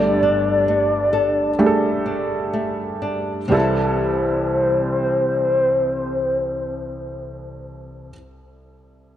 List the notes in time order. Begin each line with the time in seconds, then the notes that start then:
Already playing: G1 G2 G3 A3 D4 A4 D5
0.23 D4
0.68 A3
1.13 A4
1.59 G3 A3 D4 G#4
1.66 A4
2.06 D4
2.53 A3
3.02 D4
3.48 C2 C3 E3 G3 C4
3.52 G3 E4 A4 C5
3.57 E4 A4